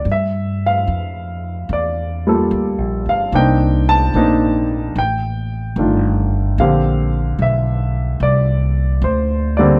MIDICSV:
0, 0, Header, 1, 3, 480
1, 0, Start_track
1, 0, Tempo, 816327
1, 29, Time_signature, 4, 2, 24, 8
1, 5760, End_track
2, 0, Start_track
2, 0, Title_t, "Grand piano"
2, 0, Program_c, 0, 0
2, 0, Control_c, 0, 64, 127
2, 36, Control_c, 0, 64, 0
2, 68, Note_on_c, 0, 76, 72
2, 135, Control_c, 0, 64, 127
2, 383, Note_off_c, 0, 76, 0
2, 391, Note_on_c, 0, 77, 77
2, 1016, Note_on_c, 0, 74, 69
2, 1028, Note_off_c, 0, 77, 0
2, 1333, Note_on_c, 0, 55, 53
2, 1335, Note_on_c, 0, 58, 51
2, 1336, Note_on_c, 0, 65, 53
2, 1345, Note_on_c, 0, 69, 58
2, 1818, Note_on_c, 0, 77, 75
2, 1831, Note_off_c, 0, 74, 0
2, 1928, Note_off_c, 0, 55, 0
2, 1929, Note_off_c, 0, 58, 0
2, 1930, Note_off_c, 0, 65, 0
2, 1934, Note_off_c, 0, 69, 0
2, 1959, Control_c, 0, 64, 0
2, 1964, Note_on_c, 0, 62, 55
2, 1966, Note_off_c, 0, 77, 0
2, 1968, Note_on_c, 0, 58, 51
2, 1972, Note_on_c, 0, 60, 52
2, 1973, Note_on_c, 0, 79, 86
2, 1977, Note_on_c, 0, 63, 60
2, 2070, Control_c, 0, 64, 127
2, 2248, Note_off_c, 0, 62, 0
2, 2250, Note_off_c, 0, 58, 0
2, 2252, Note_off_c, 0, 60, 0
2, 2254, Note_off_c, 0, 63, 0
2, 2263, Note_off_c, 0, 79, 0
2, 2287, Note_on_c, 0, 81, 99
2, 2440, Note_on_c, 0, 62, 58
2, 2444, Note_on_c, 0, 58, 57
2, 2444, Note_on_c, 0, 60, 54
2, 2450, Note_on_c, 0, 63, 66
2, 2725, Note_off_c, 0, 62, 0
2, 2727, Note_off_c, 0, 58, 0
2, 2727, Note_off_c, 0, 60, 0
2, 2730, Note_off_c, 0, 63, 0
2, 2915, Control_c, 0, 64, 0
2, 2931, Note_on_c, 0, 79, 81
2, 2933, Note_off_c, 0, 81, 0
2, 3029, Control_c, 0, 64, 127
2, 3397, Note_on_c, 0, 51, 44
2, 3402, Note_on_c, 0, 57, 44
2, 3404, Note_on_c, 0, 65, 55
2, 3405, Note_on_c, 0, 62, 45
2, 3698, Note_off_c, 0, 79, 0
2, 3871, Note_off_c, 0, 51, 0
2, 3873, Note_off_c, 0, 57, 0
2, 3874, Note_off_c, 0, 65, 0
2, 3874, Control_c, 0, 64, 0
2, 3875, Note_off_c, 0, 62, 0
2, 3879, Note_on_c, 0, 50, 58
2, 3880, Note_on_c, 0, 58, 45
2, 3880, Note_on_c, 0, 60, 50
2, 3880, Note_on_c, 0, 77, 73
2, 3886, Note_on_c, 0, 67, 60
2, 3989, Control_c, 0, 64, 127
2, 4163, Note_off_c, 0, 50, 0
2, 4164, Note_off_c, 0, 58, 0
2, 4164, Note_off_c, 0, 60, 0
2, 4167, Note_off_c, 0, 67, 0
2, 4328, Note_off_c, 0, 77, 0
2, 4363, Note_on_c, 0, 76, 75
2, 4838, Note_on_c, 0, 74, 80
2, 4848, Note_off_c, 0, 76, 0
2, 5316, Note_on_c, 0, 72, 75
2, 5325, Note_off_c, 0, 74, 0
2, 5627, Note_on_c, 0, 74, 76
2, 5638, Note_on_c, 0, 55, 61
2, 5639, Note_on_c, 0, 50, 66
2, 5641, Note_on_c, 0, 58, 58
2, 5644, Note_off_c, 0, 72, 0
2, 5650, Note_on_c, 0, 60, 74
2, 5760, Note_off_c, 0, 50, 0
2, 5760, Note_off_c, 0, 55, 0
2, 5760, Note_off_c, 0, 58, 0
2, 5760, Note_off_c, 0, 60, 0
2, 5760, Note_off_c, 0, 74, 0
2, 5760, End_track
3, 0, Start_track
3, 0, Title_t, "Upright bass"
3, 0, Program_c, 1, 32
3, 30, Note_on_c, 1, 43, 74
3, 497, Note_off_c, 1, 43, 0
3, 514, Note_on_c, 1, 41, 71
3, 979, Note_off_c, 1, 41, 0
3, 994, Note_on_c, 1, 40, 73
3, 1458, Note_off_c, 1, 40, 0
3, 1476, Note_on_c, 1, 38, 75
3, 1634, Note_off_c, 1, 38, 0
3, 1634, Note_on_c, 1, 34, 47
3, 1792, Note_off_c, 1, 34, 0
3, 1797, Note_on_c, 1, 31, 54
3, 1943, Note_off_c, 1, 31, 0
3, 1955, Note_on_c, 1, 36, 79
3, 2417, Note_off_c, 1, 36, 0
3, 2433, Note_on_c, 1, 34, 69
3, 2895, Note_off_c, 1, 34, 0
3, 2914, Note_on_c, 1, 33, 76
3, 3376, Note_off_c, 1, 33, 0
3, 3387, Note_on_c, 1, 31, 82
3, 3851, Note_off_c, 1, 31, 0
3, 3870, Note_on_c, 1, 34, 80
3, 4333, Note_off_c, 1, 34, 0
3, 4343, Note_on_c, 1, 35, 70
3, 4809, Note_off_c, 1, 35, 0
3, 4822, Note_on_c, 1, 36, 78
3, 5289, Note_off_c, 1, 36, 0
3, 5301, Note_on_c, 1, 38, 79
3, 5760, Note_off_c, 1, 38, 0
3, 5760, End_track
0, 0, End_of_file